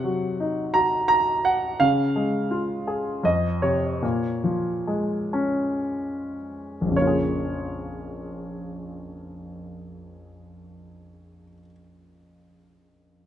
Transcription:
0.00 1.76 C3 medium
0.00 1.42 F#3 soft
0.00 0.77 F#5 medium
0.40 1.77 D#4 soft
0.74 1.77 F#4 soft
0.74 1.07 A#5 medium
1.08 1.45 A#5 medium
1.45 1.81 F#5 medium
1.80 3.20 C#3 medium
1.80 3.28 F5 medium
2.16 3.21 G#3 soft
2.51 3.22 F4 soft
2.87 3.23 G#4 soft
3.24 4.00 F2 medium
3.24 3.64 D#5 medium
3.62 4.02 C3 soft
3.62 5.81 C#5 medium
4.02 6.90 A#2 medium
4.44 6.34 F3 soft
4.87 6.89 G#3 soft
5.33 6.89 C#4 medium
6.81 11.44 A#1 soft
6.87 11.49 F2 soft
6.92 11.54 C#3 soft
6.97 11.60 A#3 soft
6.97 11.59 C#5 medium
7.02 11.64 F4 soft
7.07 11.70 G#4 soft

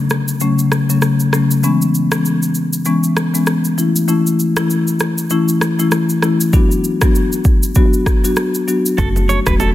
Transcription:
0.10 cross-stick medium
0.10 shaker medium
0.28 shaker medium
0.40 0.64 C#3 medium
0.40 0.64 F#3 medium
0.40 0.64 A3 medium
0.40 0.64 C#4 loud
0.40 shaker medium
0.59 shaker medium
0.72 cross-stick medium
0.72 shaker medium
0.89 1.09 C#3 medium
0.89 1.09 F#3 medium
0.89 1.09 A3 medium
0.89 1.09 C#4 medium
0.89 shaker medium
1.02 cross-stick medium
1.02 shaker medium
1.20 shaker soft
1.33 1.55 C#3 medium
1.33 1.56 F#3 medium
1.33 1.56 A3 medium
1.33 1.56 C#4 medium
1.33 cross-stick medium
1.33 shaker medium
1.51 shaker medium
1.63 1.86 E3 medium
1.63 1.86 G#3 medium
1.63 1.86 B3 medium
1.63 1.86 C#4 loud
1.63 shaker medium
1.82 shaker medium
1.95 shaker medium
2.12 2.31 E3 medium
2.12 2.32 G#3 medium
2.12 2.32 B3 medium
2.12 2.32 C#4 medium
2.12 cross-stick loud
2.12 shaker medium
2.25 shaker medium
2.43 shaker medium
2.55 shaker medium
2.73 shaker medium
2.85 3.09 E3 medium
2.85 3.09 G#3 medium
2.85 3.09 B3 medium
2.85 3.09 C#4 medium
2.85 shaker medium
3.04 shaker medium
3.17 cross-stick medium
3.17 shaker medium
3.34 3.54 E3 medium
3.34 3.54 G#3 medium
3.34 3.54 B3 medium
3.34 3.54 C#4 medium
3.34 shaker medium
3.47 cross-stick medium
3.47 shaker medium
3.65 shaker soft
3.78 4.00 E3 medium
3.78 4.00 A3 medium
3.78 4.01 C#4 medium
3.78 4.01 E4 medium
3.78 shaker medium
3.96 shaker loud
4.08 4.31 E3 medium
4.08 4.31 A3 medium
4.08 4.31 C#4 medium
4.08 4.31 E4 loud
4.08 shaker medium
4.27 shaker medium
4.39 shaker medium
4.56 4.76 E3 medium
4.56 4.76 A3 medium
4.56 4.76 C#4 medium
4.56 4.77 E4 medium
4.56 cross-stick loud
4.56 shaker medium
4.70 shaker medium
4.88 shaker medium
5.00 cross-stick medium
5.00 shaker medium
5.18 shaker medium
5.30 5.53 E3 medium
5.30 5.53 A3 medium
5.30 5.54 C#4 medium
5.30 5.54 E4 loud
5.30 shaker medium
5.48 shaker medium
5.61 cross-stick medium
5.61 shaker medium
5.79 5.99 E3 medium
5.79 5.99 A3 medium
5.79 5.99 C#4 medium
5.79 5.99 E4 medium
5.79 shaker medium
5.92 cross-stick medium
5.92 shaker medium
6.09 shaker soft
6.22 6.45 E3 medium
6.22 6.45 A3 medium
6.22 6.45 C#4 medium
6.22 6.46 E4 medium
6.22 cross-stick medium
6.22 shaker medium
6.41 shaker medium
6.53 6.76 F#3 medium
6.53 6.76 B3 medium
6.53 6.76 D4 medium
6.53 6.76 F#4 loud
6.53 kick loud
6.53 shaker medium
6.71 shaker medium
6.84 shaker medium
7.02 7.21 F#3 medium
7.02 7.21 B3 medium
7.02 7.21 D4 medium
7.02 7.22 F#4 medium
7.02 kick medium
7.02 cross-stick loud
7.02 shaker medium
7.15 shaker medium
7.32 shaker medium
7.45 kick medium
7.45 shaker medium
7.63 shaker medium
7.75 7.98 F#3 medium
7.75 7.98 B3 medium
7.75 7.98 D4 medium
7.75 7.99 F#4 medium
7.75 kick loud
7.75 shaker medium
7.93 shaker medium
8.06 kick medium
8.06 cross-stick medium
8.06 shaker medium
8.24 8.44 F#3 medium
8.24 8.44 B3 medium
8.24 8.44 D4 medium
8.24 8.44 F#4 medium
8.24 shaker medium
8.36 cross-stick medium
8.36 shaker medium
8.54 shaker soft
8.67 8.90 F#3 medium
8.67 8.90 B3 medium
8.67 8.90 D4 medium
8.67 8.91 F#4 medium
8.67 shaker medium
8.86 shaker loud
8.98 9.40 F#1 loud
8.98 9.21 F#3 medium
8.98 9.21 A3 medium
8.98 9.21 C#4 medium
8.98 9.21 F#4 medium
8.98 9.08 A4 medium
8.98 kick loud
8.98 low conga medium
8.98 shaker medium
9.16 low bongo medium
9.16 shaker medium
9.29 9.39 C#5 medium
9.29 low bongo medium
9.29 shaker medium
9.46 9.75 E1 medium
9.46 9.66 F#3 medium
9.46 9.66 A3 medium
9.46 9.66 C#4 medium
9.46 9.66 F#4 medium
9.46 9.54 B4 medium
9.46 kick medium
9.46 cross-stick loud
9.46 shaker medium
9.60 9.69 A4 medium
9.60 high bongo medium
9.60 shaker medium

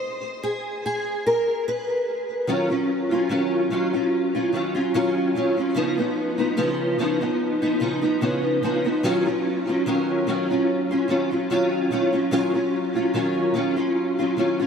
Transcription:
0.00 0.38 C5 loud
0.43 0.84 G#4 medium
0.86 1.23 G#4 medium
1.26 1.68 A#4 medium
1.68 2.45 B4 medium
2.47 2.70 D#3 medium
2.47 2.71 F#3 medium
2.47 2.70 C#4 medium
2.47 2.69 F4 medium
2.70 3.12 F#3 soft
2.70 3.11 C#4 soft
2.70 3.10 F4 soft
3.11 3.29 F#3 soft
3.11 3.30 C#4 soft
3.11 3.30 F4 medium
3.29 3.69 D#3 medium
3.29 3.70 F#3 medium
3.29 3.71 C#4 medium
3.29 3.72 F4 medium
3.70 3.93 D#3 medium
3.70 3.94 F#3 medium
3.70 3.94 C#4 medium
3.70 3.92 F4 medium
3.93 4.36 F#3 soft
3.93 4.34 C#4 soft
3.93 4.34 F4 medium
4.35 4.53 F#3 soft
4.35 4.53 C#4 medium
4.35 4.53 F4 medium
4.52 4.76 D#3 medium
4.52 4.76 F#3 medium
4.52 4.75 C#4 medium
4.52 4.73 F4 medium
4.75 4.93 F#3 soft
4.75 4.94 C#4 soft
4.75 4.94 F4 medium
4.94 5.34 D#3 medium
4.94 5.35 F#3 medium
4.94 5.36 C#4 medium
4.94 5.36 F4 medium
5.35 5.58 D#3 medium
5.35 5.59 F#3 medium
5.35 5.58 C#4 medium
5.35 5.56 F4 medium
5.57 5.76 F#3 soft
5.57 5.76 C#4 soft
5.57 5.76 F4 medium
5.74 5.98 C#3 medium
5.74 5.99 F3 medium
5.74 5.98 B3 medium
5.74 5.96 D#4 medium
5.97 6.40 F3 soft
5.97 6.38 B3 medium
5.97 6.37 D#4 medium
6.38 6.56 F3 soft
6.38 6.56 B3 medium
6.38 6.56 D#4 medium
6.57 6.97 C#3 medium
6.57 6.98 F3 medium
6.57 6.99 B3 medium
6.57 6.99 D#4 medium
6.99 7.22 C#3 medium
6.99 7.22 F3 medium
6.99 7.21 B3 medium
6.99 7.20 D#4 medium
7.21 7.64 F3 soft
7.21 7.62 B3 medium
7.21 7.61 D#4 medium
7.62 7.79 F3 medium
7.62 7.80 B3 medium
7.62 7.81 D#4 medium
7.80 8.03 C#3 medium
7.80 8.03 F3 medium
7.80 8.02 B3 medium
7.80 8.00 D#4 medium
8.02 8.21 F3 medium
8.02 8.21 B3 soft
8.02 8.21 D#4 medium
8.21 8.61 C#3 medium
8.21 8.62 F3 medium
8.21 8.63 B3 medium
8.21 8.64 D#4 medium
8.63 8.86 C#3 medium
8.63 8.86 F3 medium
8.63 8.85 B3 medium
8.63 8.83 D#4 medium
8.85 9.04 F3 soft
8.85 9.04 B3 soft
8.85 9.04 D#4 medium
9.03 9.27 D#3 medium
9.03 9.27 F#3 loud
9.03 9.26 C#4 loud
9.03 9.24 F4 loud
9.26 9.69 F#3 soft
9.26 9.68 C#4 soft
9.26 9.66 F4 medium
9.67 9.86 F#3 soft
9.67 9.86 C#4 medium
9.67 9.86 F4 medium
9.86 10.26 D#3 medium
9.86 10.27 F#3 medium
9.86 10.27 C#4 medium
9.86 10.28 F4 medium
10.27 10.50 D#3 medium
10.27 10.51 F#3 medium
10.27 10.51 C#4 medium
10.27 10.49 F4 medium
10.50 10.92 F#3 soft
10.50 10.91 C#4 medium
10.50 10.90 F4 medium
10.91 11.08 F#3 soft
10.91 11.09 C#4 medium
10.91 11.10 F4 medium
11.08 11.32 D#3 medium
11.08 11.32 F#3 medium
11.08 11.31 C#4 medium
11.08 11.30 F4 medium
11.31 11.49 F#3 soft
11.31 11.50 C#4 medium
11.31 11.50 F4 medium
11.50 11.90 D#3 medium
11.50 11.91 F#3 medium
11.50 11.91 C#4 medium
11.50 11.92 F4 medium
11.91 12.14 D#3 medium
11.91 12.14 F#3 medium
11.91 12.13 C#4 medium
11.91 12.11 F4 medium
12.12 12.31 F#3 soft
12.12 12.31 C#4 soft
12.12 12.32 F4 medium
12.31 12.55 D#3 medium
12.31 12.55 F#3 medium
12.31 12.54 C#4 medium
12.31 12.53 F4 loud
12.54 12.97 F#3 soft
12.54 12.96 C#4 soft
12.54 12.94 F4 medium
12.96 13.13 F#3 soft
12.96 13.14 C#4 medium
12.96 13.14 F4 medium
13.14 13.53 D#3 medium
13.14 13.54 F#3 medium
13.14 13.54 C#4 medium
13.14 13.55 F4 medium
13.54 13.78 D#3 medium
13.54 13.78 F#3 medium
13.54 13.77 C#4 medium
13.54 13.75 F4 medium
13.76 14.20 F#3 medium
13.76 14.19 C#4 medium
13.76 14.18 F4 medium
14.19 14.37 F#3 medium
14.19 14.37 C#4 medium
14.19 14.38 F4 medium
14.37 14.60 D#3 medium
14.37 14.61 F#3 medium
14.37 14.60 C#4 medium
14.37 14.58 F4 medium
14.59 14.67 F#3 soft
14.59 14.67 C#4 medium
14.59 14.67 F4 medium

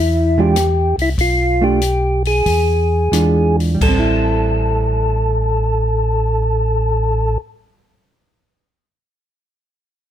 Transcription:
0.00 0.94 E2 medium
0.00 0.40 E4 medium
0.38 0.54 E3 medium
0.38 0.54 G#3 medium
0.38 0.55 D4 medium
0.38 0.55 F4 medium
0.38 0.96 G4 loud
0.56 cross-stick medium
0.56 closed hi-hat medium
0.98 1.16 C2 medium
0.98 open hi-hat soft
1.02 1.10 E4 medium
1.18 2.42 B1 medium
1.18 1.64 F4 loud
1.18 kick soft
1.18 open hi-hat soft
1.61 1.79 A3 medium
1.61 1.79 D4 medium
1.61 1.80 F4 medium
1.61 2.23 G4 medium
1.81 closed hi-hat medium
2.25 3.57 G#4 medium
2.25 open hi-hat soft
2.46 3.09 E2 medium
2.46 kick soft
2.46 open hi-hat soft
3.12 3.77 E2 medium
3.12 3.81 E3 medium
3.12 3.74 G#3 soft
3.12 3.82 D4 medium
3.12 3.82 F4 medium
3.12 cross-stick medium
3.12 closed hi-hat soft
3.60 open hi-hat soft
3.74 8.08 G3 medium
3.81 7.37 A1 medium
3.81 7.38 A4 medium
3.81 kick medium
3.81 crash medium
3.88 8.15 C4 medium
3.99 8.20 E4 medium

